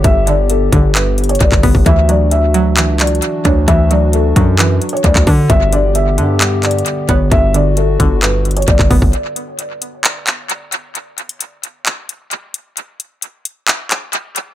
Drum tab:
HH |x-----------x-----------x-----------x-----------x-----------x--x--x--x--x-----------o-----------|x-----------x-----------x-----------x-----------x-----------x---x---x---x-----------x-----------|x-----------x-----------x-----------x-----------x-----------x---x---x---x-----------o-----------|x-----------x-----------x-----------x-----------x-----------x---x---x---x-----------x-----------|
CP |------------------------------------------------x-----------------------------x-----------------|------------------------------------------------x-----------x-----------------------------------|------------------------------------------------x-----------------------------x-----------------|------------------------------------------------x-----------x-----------------------------------|
BD |o-----------------------------------o-----------------------------------o-----o-----o-----o-----|o-----------------------------------------------------------------------------------o-----------|o-----------------------------------o-----------------------------------o-----o-----o-----------|o-----------------------------------------------------------------------------------o-----------|

HH |x-----------x-----------x-----------x-----------x-----------x--x--x--x--x-----------o-----------|x-----------x-----------x-----------x-----------x-----------x-----------x-----------x-----------|x-----------x-----x-----x-----------x-----------x-----------x-----------x-----------x-----------|x-----------x-----------x-----------x-----------x-----------x-----------x-----------x-----------|
CP |------------------------------------------------x-----------------------------x-----------------|------------------------------------------------x-----------x-----------------------------------|------------------------------------------------x-----------------------------------------------|------------------------------------------------x-----------x-----------------------------------|
BD |o-----------------------------------o-----------------------------------o-----o-----o-----o-----|------------------------------------------------------------------------------------------------|------------------------------------------------------------------------------------------------|------------------------------------------------------------------------------------------------|